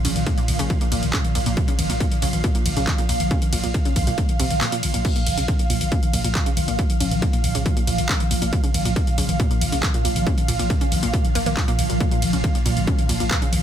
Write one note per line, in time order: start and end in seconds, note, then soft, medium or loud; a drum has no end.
0.00 5.04 A#2 medium
0.00 5.04 F3 medium
0.00 13.63 F5 medium
0.05 0.15 A#1 medium
0.05 0.08 C#3 medium
0.05 open hi-hat loud
0.05 ride medium
0.16 0.26 A#1 medium
0.16 closed hi-hat medium
0.16 mid tom loud
0.27 0.32 A#2 medium
0.27 kick loud
0.27 closed hi-hat medium
0.38 0.45 A#2 medium
0.38 closed hi-hat medium
0.48 0.59 A#1 loud
0.48 open hi-hat loud
0.48 mid tom medium
0.48 ride medium
0.59 0.70 A#1 medium
0.59 0.62 C#3 medium
0.59 closed hi-hat medium
0.70 kick loud
0.70 closed hi-hat medium
0.70 mid tom loud
0.81 0.86 A#2 medium
0.81 closed hi-hat medium
0.92 1.02 A#1 loud
0.92 0.99 A#2 medium
0.92 open hi-hat loud
0.92 ride medium
1.03 1.13 A#1 medium
1.03 closed hi-hat medium
1.03 mid tom medium
1.13 1.17 C#3 medium
1.13 kick loud
1.13 clap loud
1.13 open hi-hat medium
1.24 closed hi-hat medium
1.24 mid tom loud
1.35 1.46 A#1 loud
1.35 1.40 A#2 medium
1.35 open hi-hat loud
1.35 ride medium
1.46 1.57 A#1 medium
1.46 1.54 A#2 medium
1.46 closed hi-hat medium
1.57 kick loud
1.57 closed hi-hat medium
1.57 mid tom medium
1.68 1.71 C#3 medium
1.68 closed hi-hat medium
1.79 1.89 A#1 loud
1.79 open hi-hat loud
1.79 mid tom loud
1.79 ride medium
1.90 2.00 A#1 medium
1.90 1.95 A#2 medium
1.90 closed hi-hat medium
2.00 2.08 A#2 medium
2.00 kick loud
2.00 closed hi-hat medium
2.11 closed hi-hat medium
2.11 mid tom medium
2.22 2.33 A#1 loud
2.22 2.25 C#3 medium
2.22 open hi-hat loud
2.22 ride medium
2.33 2.44 A#1 medium
2.33 closed hi-hat medium
2.33 mid tom medium
2.44 2.49 A#2 medium
2.44 kick loud
2.44 closed hi-hat medium
2.55 2.62 A#2 medium
2.55 closed hi-hat medium
2.66 2.76 A#1 loud
2.66 open hi-hat loud
2.66 mid tom medium
2.66 ride medium
2.77 2.87 A#1 medium
2.77 2.80 C#3 medium
2.77 closed hi-hat medium
2.87 kick loud
2.87 clap loud
2.87 closed hi-hat medium
2.87 mid tom loud
2.98 3.03 A#2 medium
2.98 closed hi-hat medium
3.09 3.20 A#1 loud
3.09 3.17 A#2 medium
3.09 open hi-hat loud
3.09 ride medium
3.20 3.31 A#1 medium
3.20 closed hi-hat medium
3.20 mid tom medium
3.31 3.34 C#3 medium
3.31 kick loud
3.31 closed hi-hat medium
3.42 closed hi-hat medium
3.42 mid tom medium
3.53 3.63 A#1 loud
3.53 3.58 A#2 medium
3.53 open hi-hat loud
3.53 ride medium
3.64 3.74 A#1 medium
3.64 3.71 A#2 medium
3.64 closed hi-hat medium
3.74 kick loud
3.74 closed hi-hat medium
3.74 mid tom medium
3.85 3.88 C#3 medium
3.85 closed hi-hat medium
3.96 4.07 A#1 loud
3.96 kick medium
3.96 open hi-hat loud
3.96 mid tom medium
3.96 ride medium
4.07 4.18 A#1 medium
4.07 4.12 A#2 medium
4.07 closed hi-hat medium
4.18 4.26 A#2 medium
4.18 kick loud
4.18 closed hi-hat medium
4.29 closed hi-hat medium
4.29 mid tom medium
4.40 4.50 A#1 loud
4.40 4.43 C3 loud
4.40 open hi-hat loud
4.40 ride medium
4.51 4.61 A#1 medium
4.51 closed hi-hat medium
4.51 mid tom medium
4.61 4.64 A#2 medium
4.61 clap loud
4.61 open hi-hat medium
4.72 4.77 A#2 medium
4.72 closed hi-hat medium
4.83 4.93 A#1 loud
4.83 open hi-hat loud
4.83 mid tom medium
4.83 ride medium
4.94 5.05 A#1 medium
4.94 4.99 A#2 medium
4.94 closed hi-hat medium
5.05 5.10 A#2 medium
5.05 13.63 A#2 medium
5.05 13.63 F3 medium
5.05 kick loud
5.05 closed hi-hat medium
5.05 crash medium
5.16 5.23 A#2 medium
5.16 closed hi-hat medium
5.26 5.37 A#1 loud
5.26 open hi-hat loud
5.26 mid tom medium
5.26 ride medium
5.38 5.48 A#1 medium
5.38 5.41 C#3 medium
5.38 closed hi-hat medium
5.48 kick loud
5.48 closed hi-hat medium
5.48 mid tom medium
5.59 5.64 A#2 medium
5.59 closed hi-hat medium
5.70 5.80 A#1 loud
5.70 5.78 A#2 medium
5.70 open hi-hat loud
5.70 ride medium
5.81 5.92 A#1 medium
5.81 closed hi-hat medium
5.81 mid tom medium
5.92 5.95 C#3 medium
5.92 kick loud
5.92 closed hi-hat medium
6.03 closed hi-hat medium
6.03 mid tom medium
6.13 6.24 A#1 loud
6.13 6.19 A#2 medium
6.13 open hi-hat loud
6.13 ride medium
6.24 6.35 A#1 medium
6.24 6.32 A#2 medium
6.24 closed hi-hat medium
6.35 kick loud
6.35 clap loud
6.35 closed hi-hat medium
6.35 mid tom medium
6.46 6.49 C#3 medium
6.46 closed hi-hat medium
6.57 6.67 A#1 loud
6.57 open hi-hat loud
6.57 mid tom medium
6.57 ride medium
6.68 6.78 A#1 medium
6.68 6.73 A#2 medium
6.68 closed hi-hat medium
6.79 6.87 A#2 medium
6.79 kick loud
6.79 closed hi-hat medium
6.90 closed hi-hat medium
6.90 mid tom medium
7.00 7.11 A#1 loud
7.00 7.04 C#3 medium
7.00 open hi-hat loud
7.00 ride medium
7.11 7.22 A#1 medium
7.11 closed hi-hat medium
7.11 mid tom medium
7.22 7.27 A#2 medium
7.22 kick loud
7.22 closed hi-hat medium
7.33 7.41 A#2 medium
7.33 closed hi-hat medium
7.44 7.54 A#1 loud
7.44 open hi-hat loud
7.44 mid tom medium
7.44 ride medium
7.55 7.65 A#1 medium
7.55 7.58 C#3 medium
7.55 closed hi-hat medium
7.66 kick loud
7.66 closed hi-hat medium
7.66 mid tom medium
7.77 7.82 A#2 medium
7.77 closed hi-hat medium
7.87 7.98 A#1 loud
7.87 7.95 A#2 medium
7.87 open hi-hat loud
7.87 ride medium
7.98 8.09 A#1 medium
7.98 closed hi-hat medium
7.98 mid tom medium
8.09 8.12 C#3 medium
8.09 kick loud
8.09 clap loud
8.09 open hi-hat medium
8.20 closed hi-hat medium
8.20 mid tom medium
8.31 8.41 A#1 loud
8.31 8.36 A#2 medium
8.31 open hi-hat loud
8.31 ride medium
8.42 8.52 A#1 medium
8.42 8.49 A#2 medium
8.42 closed hi-hat medium
8.53 kick loud
8.53 closed hi-hat medium
8.53 mid tom medium
8.64 8.67 C#3 medium
8.64 closed hi-hat medium
8.74 8.85 A#1 loud
8.74 open hi-hat loud
8.74 mid tom loud
8.74 ride medium
8.85 8.96 A#1 medium
8.85 8.90 A#2 medium
8.85 closed hi-hat medium
8.96 9.04 A#2 medium
8.96 kick loud
8.96 closed hi-hat medium
9.07 closed hi-hat medium
9.07 mid tom medium
9.18 9.28 A#1 loud
9.18 9.21 C#3 medium
9.18 open hi-hat loud
9.18 ride medium
9.29 9.39 A#1 medium
9.29 closed hi-hat medium
9.29 mid tom medium
9.40 9.45 A#2 medium
9.40 kick loud
9.40 closed hi-hat medium
9.51 9.58 A#2 medium
9.51 closed hi-hat medium
9.61 9.72 A#1 loud
9.61 open hi-hat loud
9.61 mid tom medium
9.61 ride medium
9.72 9.83 A#1 medium
9.72 9.75 C#3 medium
9.72 closed hi-hat medium
9.83 kick loud
9.83 clap loud
9.83 closed hi-hat medium
9.83 mid tom medium
9.94 9.99 A#2 medium
9.94 closed hi-hat medium
10.05 10.15 A#1 loud
10.05 10.13 A#2 medium
10.05 open hi-hat loud
10.05 ride medium
10.16 10.26 A#1 medium
10.16 closed hi-hat medium
10.16 mid tom medium
10.27 10.30 C#3 medium
10.27 kick loud
10.27 closed hi-hat medium
10.38 closed hi-hat medium
10.38 mid tom medium
10.48 10.59 A#1 loud
10.48 10.53 A#2 medium
10.48 open hi-hat loud
10.48 ride medium
10.59 10.70 A#1 medium
10.59 10.67 A#2 medium
10.59 closed hi-hat medium
10.70 kick loud
10.70 closed hi-hat medium
10.70 mid tom medium
10.81 10.84 C#3 medium
10.81 closed hi-hat medium
10.92 11.02 A#1 loud
10.92 open hi-hat loud
10.92 mid tom loud
10.92 ride medium
11.03 11.13 A#1 medium
11.03 11.08 A#2 medium
11.03 closed hi-hat medium
11.13 11.21 A#2 medium
11.13 kick loud
11.13 closed hi-hat medium
11.25 closed hi-hat medium
11.25 mid tom medium
11.35 11.46 A#1 loud
11.35 11.38 A#3 loud
11.35 open hi-hat loud
11.35 ride medium
11.46 11.57 A#1 medium
11.46 11.51 A#3 medium
11.46 closed hi-hat medium
11.46 mid tom loud
11.57 11.60 A#2 medium
11.57 kick loud
11.57 clap loud
11.57 open hi-hat medium
11.68 11.71 A#2 loud
11.68 closed hi-hat medium
11.79 11.89 A#1 loud
11.79 open hi-hat loud
11.79 mid tom medium
11.79 ride medium
11.90 12.00 A#1 medium
11.90 11.97 A#2 medium
11.90 closed hi-hat medium
12.00 12.06 A#2 medium
12.00 kick loud
12.00 closed hi-hat medium
12.11 12.19 A#2 medium
12.11 closed hi-hat medium
12.22 12.33 A#1 loud
12.22 open hi-hat loud
12.22 mid tom medium
12.22 ride medium
12.33 12.44 A#1 medium
12.33 12.36 C#3 medium
12.33 closed hi-hat medium
12.44 kick loud
12.44 closed hi-hat medium
12.44 mid tom loud
12.55 12.60 A#2 medium
12.55 closed hi-hat medium
12.66 12.76 A#1 loud
12.66 12.73 A#2 medium
12.66 open hi-hat loud
12.66 ride medium
12.77 12.87 A#1 medium
12.77 closed hi-hat medium
12.77 mid tom medium
12.87 12.90 C#3 medium
12.87 kick loud
12.87 closed hi-hat medium
12.99 closed hi-hat medium
12.99 mid tom medium
13.09 13.20 A#1 loud
13.09 13.14 A#2 medium
13.09 open hi-hat loud
13.09 ride medium
13.20 13.31 A#1 medium
13.20 13.28 A#2 medium
13.20 closed hi-hat medium
13.31 kick loud
13.31 clap loud
13.31 closed hi-hat medium
13.31 mid tom medium
13.42 13.45 C#3 medium
13.42 closed hi-hat medium
13.53 13.63 A#1 loud
13.53 open hi-hat loud
13.53 mid tom loud
13.53 ride medium